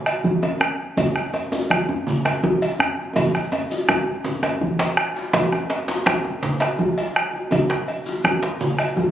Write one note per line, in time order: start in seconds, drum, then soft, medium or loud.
0.06 bombo rim medium
0.06 cowbell medium
0.06 djembe tone medium
0.24 bombo low medium
0.24 high conga medium
0.24 djembe bass medium
0.42 cowbell soft
0.42 djembe slap soft
0.42 high conga soft
0.42 djembe tone medium
0.60 bombo rim medium
0.60 djembe slap soft
0.60 djembe tone medium
0.97 bombo low medium
0.97 cowbell medium
0.97 high conga medium
0.97 low conga medium
0.97 djembe bass medium
0.97 shekere medium
1.16 bombo rim medium
1.34 bombo rim soft
1.34 cowbell soft
1.34 djembe tone medium
1.34 shekere soft
1.52 djembe slap medium
1.52 djembe tone medium
1.52 high conga soft
1.52 djembe tone medium
1.52 shekere soft
1.70 bombo rim medium
1.70 bombo low loud
1.70 cowbell soft
1.70 high conga medium
1.70 djembe bass medium
1.89 djembe slap soft
1.89 djembe bass medium
2.07 bombo rim soft
2.07 low conga medium
2.07 shekere medium
2.25 bombo rim medium
2.25 cowbell medium
2.25 djembe tone medium
2.25 shekere soft
2.43 bombo low loud
2.43 high conga medium
2.43 djembe tone medium
2.43 djembe bass medium
2.62 cowbell medium
2.62 djembe slap medium
2.62 high conga soft
2.62 shekere soft
2.79 bombo rim loud
2.79 djembe slap soft
2.79 djembe bass medium
2.99 djembe tone medium
3.16 bombo low medium
3.16 cowbell medium
3.16 djembe slap soft
3.16 djembe tone loud
3.16 high conga medium
3.16 low conga medium
3.16 djembe bass medium
3.16 shekere medium
3.35 bombo rim medium
3.35 djembe slap soft
3.35 shekere soft
3.52 bombo rim soft
3.52 cowbell medium
3.52 djembe tone loud
3.52 shekere soft
3.71 djembe slap medium
3.71 djembe tone medium
3.71 shekere soft
3.89 bombo rim loud
3.89 bombo low loud
3.89 cowbell soft
3.89 djembe tone loud
3.89 high conga medium
3.89 djembe bass medium
4.07 djembe slap soft
4.24 djembe tone medium
4.24 low conga medium
4.24 shekere medium
4.43 bombo rim medium
4.43 cowbell medium
4.43 djembe tone loud
4.43 djembe tone medium
4.61 bombo low loud
4.61 high conga medium
4.61 djembe bass soft
4.79 cowbell medium
4.79 djembe slap loud
4.79 djembe bass soft
4.79 shekere soft
4.97 bombo rim medium
4.97 djembe slap soft
4.97 high conga soft
5.16 djembe slap medium
5.16 shekere soft
5.33 bombo low loud
5.33 cowbell medium
5.33 djembe slap loud
5.33 high conga medium
5.33 low conga medium
5.33 djembe bass medium
5.33 shekere medium
5.52 bombo rim medium
5.52 djembe tone medium
5.70 bombo rim soft
5.70 cowbell medium
5.70 djembe slap medium
5.70 shekere soft
5.88 djembe slap medium
5.88 high conga soft
5.88 djembe tone medium
5.88 shekere medium
6.06 bombo rim medium
6.06 bombo low medium
6.06 cowbell medium
6.06 djembe slap loud
6.06 high conga medium
6.06 djembe bass medium
6.24 djembe slap soft
6.24 djembe tone medium
6.43 bombo rim soft
6.43 djembe slap medium
6.43 low conga medium
6.43 shekere medium
6.60 bombo rim medium
6.60 cowbell medium
6.60 djembe slap medium
6.60 djembe tone medium
6.60 shekere soft
6.79 bombo low medium
6.79 high conga medium
6.79 djembe bass medium
6.97 cowbell medium
6.97 djembe slap medium
6.97 high conga soft
6.97 shekere soft
7.16 bombo rim medium
7.16 djembe slap soft
7.34 djembe tone medium
7.51 bombo low medium
7.51 cowbell medium
7.51 djembe tone medium
7.51 high conga medium
7.51 low conga medium
7.51 djembe bass medium
7.51 shekere medium
7.70 bombo rim medium
7.70 djembe slap medium
7.88 bombo rim soft
7.88 cowbell soft
7.88 shekere soft
8.06 djembe slap medium
8.06 djembe tone medium
8.06 high conga soft
8.06 shekere soft
8.24 bombo rim loud
8.24 bombo low loud
8.24 djembe tone medium
8.24 high conga medium
8.24 djembe bass medium
8.42 djembe slap soft
8.42 djembe slap medium
8.60 bombo rim soft
8.60 low conga medium
8.60 shekere medium
8.78 bombo rim medium
8.78 cowbell medium
8.78 djembe tone medium
8.78 shekere soft
8.96 bombo low loud
8.96 high conga medium
8.96 djembe bass medium